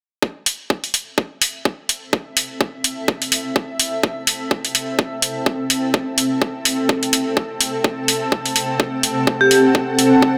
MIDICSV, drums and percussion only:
0, 0, Header, 1, 2, 480
1, 0, Start_track
1, 0, Tempo, 476190
1, 227, Time_signature, 4, 2, 24, 8
1, 10462, End_track
2, 0, Start_track
2, 0, Title_t, "Drums"
2, 227, Note_on_c, 9, 36, 102
2, 328, Note_off_c, 9, 36, 0
2, 467, Note_on_c, 9, 46, 94
2, 568, Note_off_c, 9, 46, 0
2, 707, Note_on_c, 9, 36, 100
2, 808, Note_off_c, 9, 36, 0
2, 843, Note_on_c, 9, 46, 57
2, 944, Note_off_c, 9, 46, 0
2, 947, Note_on_c, 9, 46, 96
2, 1048, Note_off_c, 9, 46, 0
2, 1187, Note_on_c, 9, 36, 110
2, 1288, Note_off_c, 9, 36, 0
2, 1427, Note_on_c, 9, 46, 103
2, 1528, Note_off_c, 9, 46, 0
2, 1667, Note_on_c, 9, 36, 101
2, 1768, Note_off_c, 9, 36, 0
2, 1907, Note_on_c, 9, 46, 97
2, 2008, Note_off_c, 9, 46, 0
2, 2147, Note_on_c, 9, 36, 110
2, 2248, Note_off_c, 9, 36, 0
2, 2386, Note_on_c, 9, 46, 98
2, 2487, Note_off_c, 9, 46, 0
2, 2627, Note_on_c, 9, 36, 104
2, 2728, Note_off_c, 9, 36, 0
2, 2866, Note_on_c, 9, 46, 100
2, 2967, Note_off_c, 9, 46, 0
2, 3107, Note_on_c, 9, 36, 115
2, 3207, Note_off_c, 9, 36, 0
2, 3242, Note_on_c, 9, 46, 58
2, 3343, Note_off_c, 9, 46, 0
2, 3346, Note_on_c, 9, 46, 104
2, 3447, Note_off_c, 9, 46, 0
2, 3587, Note_on_c, 9, 36, 107
2, 3688, Note_off_c, 9, 36, 0
2, 3826, Note_on_c, 9, 46, 102
2, 3927, Note_off_c, 9, 46, 0
2, 4067, Note_on_c, 9, 36, 110
2, 4168, Note_off_c, 9, 36, 0
2, 4306, Note_on_c, 9, 46, 104
2, 4407, Note_off_c, 9, 46, 0
2, 4547, Note_on_c, 9, 36, 103
2, 4648, Note_off_c, 9, 36, 0
2, 4683, Note_on_c, 9, 46, 61
2, 4784, Note_off_c, 9, 46, 0
2, 4786, Note_on_c, 9, 46, 99
2, 4887, Note_off_c, 9, 46, 0
2, 5027, Note_on_c, 9, 36, 113
2, 5128, Note_off_c, 9, 36, 0
2, 5266, Note_on_c, 9, 46, 104
2, 5366, Note_off_c, 9, 46, 0
2, 5507, Note_on_c, 9, 36, 107
2, 5608, Note_off_c, 9, 36, 0
2, 5746, Note_on_c, 9, 46, 101
2, 5847, Note_off_c, 9, 46, 0
2, 5987, Note_on_c, 9, 36, 110
2, 6088, Note_off_c, 9, 36, 0
2, 6227, Note_on_c, 9, 46, 104
2, 6327, Note_off_c, 9, 46, 0
2, 6467, Note_on_c, 9, 36, 103
2, 6568, Note_off_c, 9, 36, 0
2, 6707, Note_on_c, 9, 46, 101
2, 6808, Note_off_c, 9, 46, 0
2, 6947, Note_on_c, 9, 36, 114
2, 7048, Note_off_c, 9, 36, 0
2, 7083, Note_on_c, 9, 46, 60
2, 7184, Note_off_c, 9, 46, 0
2, 7187, Note_on_c, 9, 46, 108
2, 7287, Note_off_c, 9, 46, 0
2, 7427, Note_on_c, 9, 36, 103
2, 7528, Note_off_c, 9, 36, 0
2, 7666, Note_on_c, 9, 46, 105
2, 7767, Note_off_c, 9, 46, 0
2, 7907, Note_on_c, 9, 36, 110
2, 8008, Note_off_c, 9, 36, 0
2, 8147, Note_on_c, 9, 46, 102
2, 8248, Note_off_c, 9, 46, 0
2, 8387, Note_on_c, 9, 36, 99
2, 8488, Note_off_c, 9, 36, 0
2, 8523, Note_on_c, 9, 46, 57
2, 8624, Note_off_c, 9, 46, 0
2, 8626, Note_on_c, 9, 46, 95
2, 8726, Note_off_c, 9, 46, 0
2, 8867, Note_on_c, 9, 36, 114
2, 8968, Note_off_c, 9, 36, 0
2, 9106, Note_on_c, 9, 46, 102
2, 9207, Note_off_c, 9, 46, 0
2, 9347, Note_on_c, 9, 36, 103
2, 9447, Note_off_c, 9, 36, 0
2, 9586, Note_on_c, 9, 46, 97
2, 9686, Note_off_c, 9, 46, 0
2, 9827, Note_on_c, 9, 36, 104
2, 9927, Note_off_c, 9, 36, 0
2, 10066, Note_on_c, 9, 46, 98
2, 10167, Note_off_c, 9, 46, 0
2, 10307, Note_on_c, 9, 36, 96
2, 10407, Note_off_c, 9, 36, 0
2, 10462, End_track
0, 0, End_of_file